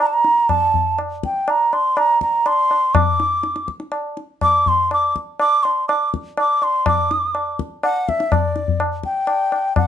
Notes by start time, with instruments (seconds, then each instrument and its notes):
0.00 bansuri A#5
0.07 bansuri A5
0.13 bansuri A#5
0.24 tabla te
0.49 bansuri A5, tabla na, tabla ge
0.74 tabla ge
0.99 tabla na
1.23 bansuri G5, tabla ke
1.48 bansuri A#5, tabla na
1.73 bansuri C6, tabla na
1.97 bansuri A#5, tabla na
2.21 bansuri A#5, tabla ke
2.46 bansuri C6, tabla na
2.71 tabla na
2.95 bansuri D6, tabla na, tabla ge
3.20 tabla te
3.43 tabla te
3.56 tabla te
3.68 tabla ke
3.80 tabla te
3.92 tabla na
4.17 tabla te
4.41 bansuri D6, tabla na, tabla ge
4.66 bansuri C6, tabla ge
4.91 bansuri D6, tabla na
5.16 tabla ke
5.39 bansuri D6, tabla na
5.63 bansuri C6, tabla na
5.88 bansuri D6, tabla na
6.14 tabla ke
6.37 bansuri D6, tabla na
6.62 bansuri C6, tabla na
6.86 bansuri D6, tabla na, tabla ge
7.11 tabla te
7.35 tabla na
7.59 tabla ke
7.83 bansuri F#5, tabla na
8.09 bansuri E5, tabla ke
8.20 tabla te
8.32 bansuri D5, tabla na, tabla ge
8.56 tabla te
8.68 tabla ge
8.80 tabla na
9.03 bansuri G5, tabla ke
9.27 tabla na
9.52 tabla na
9.76 bansuri F#5, tabla na, tabla ge